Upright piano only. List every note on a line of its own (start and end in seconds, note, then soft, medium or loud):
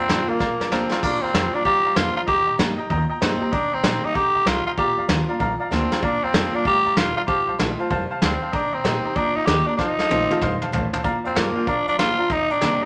0.08 0.21 D5 medium
0.08 0.21 F5 medium
0.08 0.21 A#5 medium
0.28 0.35 D5 medium
0.28 0.36 F5 medium
0.28 0.36 A#5 medium
0.39 0.52 D5 medium
0.39 0.52 F5 medium
0.39 0.53 A#5 medium
0.60 0.67 D5 medium
0.60 0.67 F5 medium
0.60 0.68 A#5 medium
0.71 0.83 D5 medium
0.71 0.84 F5 medium
0.71 0.84 A#5 loud
0.91 0.98 D5 medium
0.91 0.98 F5 medium
0.91 0.99 A#5 medium
1.03 1.15 D5 loud
1.03 1.15 F5 medium
1.03 1.15 A#5 loud
1.23 1.30 D5 medium
1.23 1.30 F5 medium
1.23 1.30 A#5 medium
1.34 1.46 D5 medium
1.34 1.46 F5 medium
1.34 1.46 A#5 medium
1.54 1.61 D5 medium
1.54 1.61 F5 medium
1.54 1.61 A#5 medium
1.65 1.77 D5 medium
1.65 1.78 F5 medium
1.65 1.78 A#5 loud
1.85 1.92 D5 medium
1.85 1.92 F5 medium
1.85 1.92 A#5 medium
1.95 2.08 D5 medium
1.95 2.08 F5 medium
1.95 2.09 A#5 medium
2.16 2.23 D5 medium
2.16 2.23 F5 medium
2.16 2.24 A#5 medium
2.27 2.39 D#5 loud
2.27 2.40 G5 medium
2.27 2.40 A#5 loud
2.47 2.54 D#5 medium
2.47 2.54 G5 medium
2.47 2.55 A#5 medium
2.59 2.71 G5 medium
2.59 2.71 A#5 medium
2.78 2.85 D#5 medium
2.78 2.86 G5 medium
2.78 2.86 A#5 loud
2.90 3.02 D#5 loud
2.90 3.03 G5 loud
2.90 3.03 A#5 loud
3.10 3.17 D#5 medium
3.10 3.17 G5 medium
3.10 3.17 A#5 medium
3.21 3.33 D#5 medium
3.21 3.34 G5 medium
3.21 3.34 A#5 medium
3.41 3.48 D#5 medium
3.41 3.48 G5 medium
3.41 3.49 A#5 medium
3.52 3.64 D#5 loud
3.52 3.64 G5 medium
3.52 3.65 A#5 loud
3.72 3.79 D#5 medium
3.72 3.79 G5 medium
3.72 3.80 A#5 medium
3.84 3.96 D#5 medium
3.84 3.96 G5 medium
3.84 3.97 A#5 medium
4.04 4.10 D#5 medium
4.04 4.11 G5 medium
4.04 4.11 A#5 medium
4.14 4.27 D#5 loud
4.14 4.27 G5 medium
4.14 4.27 A#5 loud
4.35 4.42 D#5 medium
4.35 4.42 G5 medium
4.35 4.42 A#5 medium
4.46 4.58 D#5 medium
4.46 4.59 G5 medium
4.46 4.59 A#5 medium
4.66 4.73 D#5 medium
4.66 4.73 G5 medium
4.66 4.74 A#5 medium
4.78 4.90 D5 loud
4.78 4.90 F5 medium
4.78 4.91 A#5 loud
4.98 5.04 D5 medium
4.98 5.05 F5 medium
4.98 5.05 A#5 medium
5.08 5.20 D5 medium
5.08 5.21 F5 medium
5.08 5.21 A#5 medium
5.29 5.36 D5 medium
5.29 5.36 F5 medium
5.29 5.36 A#5 loud
5.39 5.52 D5 loud
5.39 5.52 F5 loud
5.39 5.53 A#5 loud
5.60 5.67 D5 medium
5.60 5.67 F5 medium
5.60 5.67 A#5 loud
5.70 5.83 D5 medium
5.70 5.83 F5 medium
5.70 5.84 A#5 medium
5.91 5.98 D5 medium
5.91 5.98 F5 medium
5.91 5.99 A#5 medium
6.02 6.15 D5 loud
6.02 6.15 F5 medium
6.02 6.15 A#5 loud
6.23 6.29 D5 medium
6.23 6.30 F5 medium
6.23 6.30 A#5 medium
6.34 6.46 D5 medium
6.34 6.46 F5 medium
6.34 6.47 A#5 medium
6.54 6.61 D5 medium
6.54 6.61 F5 medium
6.54 6.61 A#5 medium
6.65 6.77 D5 medium
6.65 6.77 F5 medium
6.65 6.78 A#5 loud
6.85 6.92 D5 medium
6.85 6.92 F5 medium
6.85 6.92 A#5 medium
6.96 7.08 D5 medium
6.96 7.09 F5 medium
6.96 7.09 A#5 medium
7.16 7.23 D5 medium
7.16 7.23 F5 medium
7.16 7.24 A#5 medium
7.27 7.39 C5 loud
7.27 7.40 F5 medium
7.27 7.40 A5 loud
7.47 7.54 C5 medium
7.47 7.55 F5 medium
7.47 7.55 A5 medium
7.59 7.71 C5 medium
7.59 7.71 F5 medium
7.59 7.72 A5 medium
7.79 7.86 C5 medium
7.79 7.86 F5 medium
7.79 7.87 A5 loud
7.90 8.03 C5 loud
7.90 8.03 F5 loud
7.90 8.03 A5 loud
8.11 8.17 C5 medium
8.11 8.17 F5 medium
8.11 8.18 A5 loud
8.22 8.34 C5 medium
8.22 8.34 F5 medium
8.22 8.34 A5 medium
8.42 8.48 C5 medium
8.42 8.49 F5 medium
8.42 8.49 A5 medium
8.52 8.65 D#5 loud
8.52 8.65 G5 medium
8.52 8.65 A#5 loud
8.72 8.80 D#5 medium
8.72 8.80 G5 medium
8.72 8.80 A#5 medium
8.84 8.96 D#5 medium
8.84 8.97 G5 medium
8.84 8.97 A#5 medium
9.05 9.11 D#5 medium
9.05 9.12 G5 medium
9.05 9.12 A#5 medium
9.16 9.28 D#5 loud
9.16 9.28 G5 medium
9.16 9.29 A#5 loud
9.37 9.43 D#5 medium
9.37 9.43 G5 medium
9.37 9.44 A#5 medium
9.48 9.60 D#5 medium
9.48 9.60 G5 medium
9.48 9.60 A#5 medium
9.68 9.74 D#5 medium
9.68 9.75 G5 medium
9.68 9.75 A#5 medium
9.79 9.91 C5 loud
9.79 9.91 F5 medium
9.79 9.91 A5 loud
9.99 10.06 C5 medium
9.99 10.06 F5 medium
9.99 10.06 A5 medium
10.11 10.22 C5 medium
10.11 10.23 F5 medium
10.11 10.23 A5 medium
10.30 10.37 C5 medium
10.30 10.37 F5 medium
10.30 10.38 A5 loud
10.41 10.53 C5 loud
10.41 10.54 F5 loud
10.41 10.54 C6 loud
10.62 10.68 C5 medium
10.62 10.69 F5 medium
10.62 10.69 A5 loud
10.73 10.85 C5 medium
10.73 10.85 F5 medium
10.73 10.86 A5 loud
10.93 11.00 C5 medium
10.93 11.00 F5 medium
10.93 11.00 A5 loud
11.04 11.16 D5 loud
11.04 11.16 F5 loud
11.04 11.17 A#5 loud
11.24 11.31 D5 medium
11.24 11.31 F5 medium
11.24 11.31 A#5 medium
11.35 11.47 D5 medium
11.35 11.48 F5 medium
11.35 11.48 A#5 medium
11.55 11.62 D5 medium
11.55 11.63 F5 medium
11.55 11.63 G5 medium
11.67 11.79 D5 medium
11.67 11.79 F5 medium
11.67 11.79 A#5 loud
11.87 11.94 D5 medium
11.87 11.94 F5 medium
11.87 11.94 A#5 medium
11.99 12.11 D5 medium
11.99 12.11 F5 medium
11.99 12.11 A#5 medium
12.18 12.25 D5 medium
12.18 12.26 F5 medium
12.18 12.26 A#5 medium
12.30 12.42 D#5 medium
12.30 12.42 G5 medium
12.30 12.43 A#5 loud
12.49 12.56 D#5 medium
12.49 12.57 G5 medium
12.49 12.57 A#5 medium
12.60 12.73 D#5 medium
12.60 12.73 G5 medium
12.60 12.74 A#5 medium
12.81 12.85 D#5 medium
12.81 12.85 G5 medium
12.81 12.85 A#5 medium